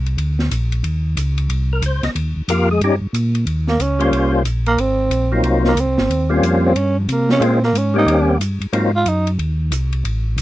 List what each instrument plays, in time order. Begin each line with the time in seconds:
Already playing: tonewheel organ C2
0.06 ride
0.17 tonewheel organ D2, ride
0.39 snare
0.51 tonewheel organ A#1, hi-hat pedal, ride
0.72 ride
0.83 tonewheel organ D#2, ride
1.17 tonewheel organ C#2, hi-hat pedal, ride
1.38 ride
1.49 tonewheel organ C2, ride
1.73 tonewheel organ A#4
1.82 tonewheel organ C#2 C5, hi-hat pedal, ride
2.03 tonewheel organ C#2 D#5, snare, ride
2.15 tonewheel organ D#2, ride
2.36 tonewheel organ D#2
2.48 tonewheel organ F2 A#3 F4 G4 A#4, hi-hat pedal, ride
2.71 tonewheel organ G#3 G#4
2.81 tonewheel organ G2 G3 C#4 D#4 G4, ride
3.01 tonewheel organ G2
3.13 tonewheel organ A#2, hi-hat pedal, ride
3.35 ride
3.46 tonewheel organ D#2, ride
3.67 tenor saxophone A#3, snare
3.79 tonewheel organ C#2, tenor saxophone C#4, hi-hat pedal, ride
3.99 tonewheel organ G3 A#3 C#4 F4 C5, ride
4.11 tonewheel organ C2, ride
4.44 tonewheel organ A#1, hi-hat pedal, ride
4.66 tenor saxophone A#3, ride
4.77 tonewheel organ G#1, tenor saxophone C4, ride
5.09 tonewheel organ A#1, hi-hat pedal, ride
5.32 tonewheel organ F#3 A#3 C4 D#4 F4
5.42 tonewheel organ C2, ride
5.64 tenor saxophone A#3, snare
5.75 tonewheel organ C#2, hi-hat pedal, ride
5.80 tenor saxophone C4
5.86 tonewheel organ C2
5.98 tonewheel organ G#1, snare
6.09 tonewheel organ D#2, ride
6.30 tonewheel organ G3 A#3 C4 C#4 F4
6.42 tonewheel organ F2, hi-hat pedal, ride
6.65 tenor saxophone C4
6.75 tonewheel organ G2, tenor saxophone C#4, ride
6.99 tenor saxophone F3
7.08 tonewheel organ C3, tenor saxophone A#3, hi-hat pedal, ride
7.29 tenor saxophone C#4, snare
7.39 tonewheel organ A#2 G#3 A#3 C4 C#4 F4, ride
7.43 tenor saxophone C4
7.63 tenor saxophone A#3, snare
7.73 tonewheel organ G#2, hi-hat pedal, ride
7.78 tenor saxophone C#4
7.94 tonewheel organ G3 A#3 C4 C#4 G4
7.98 tenor saxophone D#4
8.06 tonewheel organ D#2, ride
8.39 tonewheel organ G2, hi-hat pedal, ride
8.60 tonewheel organ G2, ride
8.73 tonewheel organ G#2 F#3 A#3 C4 D#4 F4, ride
8.96 tenor saxophone F4
9.06 tonewheel organ F#2, tenor saxophone D#4, hi-hat pedal, ride
9.27 ride
9.39 tonewheel organ D#2, ride
9.71 tonewheel organ C2, hi-hat pedal, ride
9.93 ride
10.04 tonewheel organ A1, ride
10.37 tonewheel organ B1, hi-hat pedal, ride